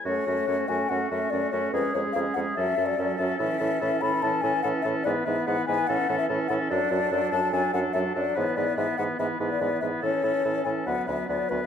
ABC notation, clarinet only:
X:1
M:4/4
L:1/8
Q:1/4=144
K:F#m
V:1 name="Clarinet"
C C C C C C C C | C C C C C C C C | C C C C C C C C | B, B, B, B, C C C C |
[K:Emix] D D D D D D D D | B, B, B, B, B, B, B, B, | C C C C B, B, B, B, |]